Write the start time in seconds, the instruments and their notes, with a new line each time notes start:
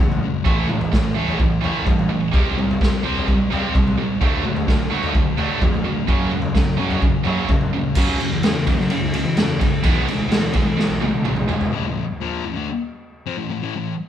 0.00 fingered electric bass E2, distorted electric guitar F#2 C#3, clean electric guitar F#3 A3 C#4 F#4
0.12 mid tom
0.23 distorted electric guitar F#2 C#3
0.46 fingered electric bass A1, distorted electric guitar A2 E3 A3, kick, floor tom
0.69 distorted electric guitar A2 E3, mid tom
0.81 floor tom
0.93 fingered electric bass A2, distorted electric guitar A2 E3, kick, snare
1.16 fingered electric bass A1, distorted electric guitar A2 E3 A3
1.28 floor tom
1.40 fingered electric bass A1, distorted electric guitar A2 E3, kick
1.61 fingered electric bass A1, distorted electric guitar A2 E3, floor tom
1.65 distorted electric guitar A2 E3 A3
1.86 fingered electric bass G2, distorted electric guitar A2 E3, kick, floor tom
1.99 mid tom
2.09 distorted electric guitar A2 E3
2.32 fingered electric bass C2, distorted electric guitar C3 G3 C4, kick, floor tom
2.57 distorted electric guitar C3 G3, mid tom
2.71 floor tom
2.81 distorted electric guitar C3 G3, fingered electric bass C3, kick, snare
3.04 fingered electric bass C2, distorted electric guitar C3 G3 C4
3.17 floor tom
3.28 fingered electric bass C2, distorted electric guitar C3 G3, kick
3.50 fingered electric bass C2, distorted electric guitar C3 G3 C4, floor tom
3.75 fingered electric bass C2, distorted electric guitar C3 G3, kick, floor tom
3.87 mid tom
3.97 distorted electric guitar C3 G3
4.21 fingered electric bass D2, distorted electric guitar D3 F#3 A3 D4, kick, floor tom
4.45 distorted electric guitar D3 F#3 A3, mid tom
4.56 floor tom
4.67 distorted electric guitar D3 F#3 A3, fingered electric bass D3, kick, snare
4.90 fingered electric bass D2, distorted electric guitar D3 F#3 A3 D4
5.03 floor tom
5.14 fingered electric bass D2, distorted electric guitar D3 F#3 A3, kick
5.37 fingered electric bass D2, distorted electric guitar D3 F#3 A3 D4, floor tom
5.60 fingered electric bass F2, distorted electric guitar D3 F#3 A3, kick, floor tom
5.74 mid tom
5.84 distorted electric guitar D3 F#3 A3
6.07 distorted electric guitar F#2 C#3 F#3, fingered electric bass F#2, kick, floor tom
6.31 distorted electric guitar F#2 C#3, mid tom
6.42 floor tom
6.55 distorted electric guitar F#2 C#3, fingered electric bass F#3, kick, snare
6.79 distorted electric guitar F#2 C#3 F#3, fingered electric bass F#2
6.91 floor tom
7.01 distorted electric guitar F#2 C#3, fingered electric bass F#2, kick
7.25 distorted electric guitar F#2 C#3 F#3, fingered electric bass F#2, floor tom
7.49 fingered electric bass F#2, distorted electric guitar F#2 C#3, kick, floor tom
7.61 mid tom
7.74 distorted electric guitar F#2 C#3
7.95 fingered electric bass F#2, distorted electric guitar F#2 C#3 F#3, kick, crash
8.09 fingered electric bass C#2
8.21 distorted electric guitar F#2 C#3, ride
8.33 fingered electric bass E2
8.43 distorted electric guitar F#2 C#3, snare, ride
8.67 distorted electric guitar F#2 C#3, kick, ride
8.80 fingered electric bass F#3, snare
8.90 distorted electric guitar F#2 C#3, ride
9.01 fingered electric bass C#2
9.14 distorted electric guitar F#2 C#3, ride
9.25 fingered electric bass E3
9.36 fingered electric bass E2, distorted electric guitar F#2 C#3, snare, ride
9.60 distorted electric guitar F#2 C#3, kick, ride
9.83 distorted electric guitar E2 B2 E3 G#3 B3, fingered electric bass E2, kick, ride
9.96 fingered electric bass B1
10.07 distorted electric guitar E2 B2 E3 G#3, ride
10.21 fingered electric bass D2
10.29 distorted electric guitar E2 B2 E3 G#3, snare, ride
10.53 distorted electric guitar E2 B2 E3 G#3, kick, ride
10.67 fingered electric bass E3
10.77 distorted electric guitar E2 B2 E3 G#3, snare
10.90 fingered electric bass B1
11.01 distorted electric guitar E2 B2 E3 G#3, high tom
11.14 fingered electric bass D3
11.24 fingered electric bass B1, distorted electric guitar E2 B2 E3 G#3, mid tom
11.36 mid tom
11.48 distorted electric guitar E2 B2 E3 G#3, floor tom
11.61 floor tom
11.72 distorted electric guitar A2 E3
11.86 distorted electric guitar A2 E3
12.21 distorted electric guitar A#2 F3 A#3
12.45 distorted electric guitar A2 E3
12.55 distorted electric guitar D3 A3
13.26 distorted electric guitar F3 C4
13.38 distorted electric guitar A2 E3
13.50 distorted electric guitar A2 E3
13.62 distorted electric guitar A2 E3
13.75 distorted electric guitar A2 E3